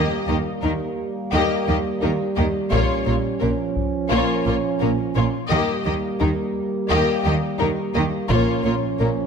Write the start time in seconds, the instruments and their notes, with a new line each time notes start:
Already playing: trombone section G3 A#3, viola section A#3, violin section G4 D#5
0.28 double bass section D#2, cello section D#3, viola section A#3, violin section G4 D#5
0.62 double bass section D#2, cello section D#3, viola section A#3, violin section D#4 A#4
1.32 double bass section D#2, cello section D#3, viola section A#3, violin section G4 D#5
1.68 double bass section D#2, cello section D#3, viola section A#3, violin section G4 D#5
2.02 double bass section D#2, cello section D#3, viola section A#3, violin section D#4 A#4
2.36 double bass section D#2, cello section D#3, viola section A#3, violin section G4 D#5
2.71 double bass section A#1, cello section A#2, viola section A#3, trombone section C#4, violin section F4 C#5, taiko
3.06 double bass section A#1, cello section A#2, viola section A#3, violin section F4 C#5
3.40 double bass section A#1, cello section A#2, trombone section F3, viola section A#3, violin section C#4 A#4
3.77 taiko
4.10 double bass section A#1, cello section A#2, viola section A#3, violin section F4 C#5
4.46 double bass section A#1, cello section A#2, viola section A#3, violin section F4 C#5
4.80 double bass section A#1, cello section A#2, viola section A#3, violin section C#4 A#4
5.15 double bass section A#1, cello section A#2, viola section A#3, violin section F4 C#5
5.49 double bass section D#2, cello section D#3, trombone section G3 A#3, viola section A#3, violin section G4 D#5
5.85 double bass section D#2, cello section D#3, viola section A#3, violin section G4 D#5
6.20 double bass section D#2, cello section D#3, viola section A#3, violin section D#4 A#4
6.89 double bass section D#2, cello section D#3, viola section A#3, violin section G4 D#5
7.24 double bass section D#2, cello section D#3, viola section A#3, violin section G4 D#5
7.58 double bass section D#2, cello section D#3, viola section A#3, violin section D#4 A#4
7.95 double bass section D#2, cello section D#3, viola section A#3, violin section G4 D#5
8.29 double bass section A#1, cello section A#2, trombone section F3 C#4, viola section A#3, violin section F4 C#5, taiko
8.65 double bass section A#1, cello section A#2, viola section A#3, violin section F4 C#5
9.00 double bass section A#1, cello section A#2, viola section A#3, violin section C#4 A#4